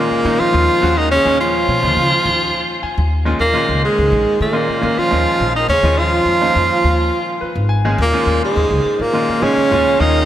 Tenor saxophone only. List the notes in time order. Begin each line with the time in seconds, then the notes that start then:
Already playing: A#3
0.40 F4
0.98 D#4
1.11 C#4
1.40 F4
3.40 A#3
3.85 G#3
4.42 A#3
4.99 F4
5.56 D#4
5.69 C#4
5.98 F4
8.02 A#3
8.45 G#3
9.01 A#3
9.43 C#4
10.00 D#4